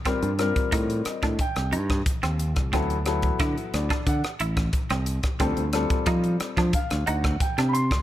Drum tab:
HH |xxxxxxxxxxx-xxxx|xxxxxxxxxxxxxxxx|xxxxxxxxxxx-xxxx|
SD |r-r-r-rr-r-r-r-r|r-r-r-rr-r-r-r-r|r-r-r-rr-r-r-r-r|
BD |o--oo--oo--oo--o|o--oo--oo--oo--o|o--oo--oo--oo--o|